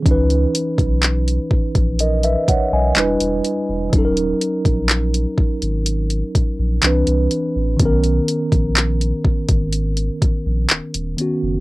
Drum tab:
HH |xxxxxx-xxxx-xxx-|xxxxxx-xxxx-xxx-|xxxxxx-xxxx-xxx-|
CP |----x-------x---|----x-------x---|----x-------x---|
BD |o--o--oo--o-----|o--o--o---o-----|o--o--oo--o-----|